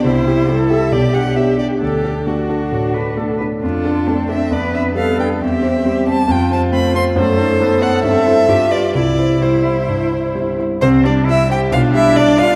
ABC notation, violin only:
X:1
M:4/4
L:1/8
Q:1/4=134
K:Dmix
V:1 name="Violin"
c3 e d f e d | G2 F4- F z | [K:C] A3 e d e f g | e3 a g a b c' |
c3 ^f e3 d | d2 c4- c z | c d e g f e d f |]